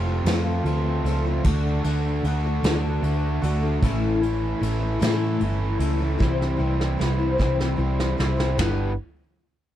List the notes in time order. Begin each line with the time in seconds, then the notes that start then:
Already playing: F1 F2 C3 F3 A3 C4 F4
0.06 C4 F4 A4
0.24 F2 F3 A3 C4 F4, snare, ride
0.29 A4
0.64 D2 F3 A3 C4 F4 A4, ride
1.04 C#2 F3 A3 C4 F4, ride
1.08 A4
1.24 C4 F4 A4
1.44 D2 D3 A3 D4 F#4 A4, kick, ride
1.84 D2 D3 A3 D4 F#4 A4, ride
2.23 D2 D3 A3 D4 F#4, ride
2.27 A4
2.43 D4 F#4 A4
2.63 D2 D3 A3 D4 F#4 A4, snare, ride
3.02 D2 D3 A3 D4 F#4, ride
3.07 A4
3.42 D2 A3 D4 F#4 A4, ride
3.62 D4 F#4 A4
3.82 A1 A2 E3 A3 C#4 E4 A4, kick, ride
4.22 A2 E3 A3 C#4 E4, ride
4.26 A4
4.60 A1 E3 A3 C#4 E4 A4, ride
4.80 A3 C#4 E4 A4
4.99 A2 E3 A3 C#4 E4 A4, snare, ride
5.40 G1 E3 A3 C#4 E4 A4, ride
5.79 C#2 A3 C#4 E4 A4, ride
5.99 A3 C#4 E4 A4
6.18 C2 C3 E3 G3 C4 E4 C5, kick, snare
6.42 snare
6.57 C2 C3 E3 G3 C4 E4 C5
6.81 snare
6.98 C2 E3 G3 C4 E4 C5, snare
7.18 G3 C4 E4 C5
7.38 C2 C3 E3 G3 C4 E4 C5, kick, snare
7.60 snare
7.76 C2 E3 G3 C4 E4 C5
8.00 snare
8.17 C2 G3 C4 E4 C5, snare
8.22 G3
8.37 G3 C4 E4 C5, snare
8.57 G1 G3 B3 D4 A4 B4, snare, floor tom, ride bell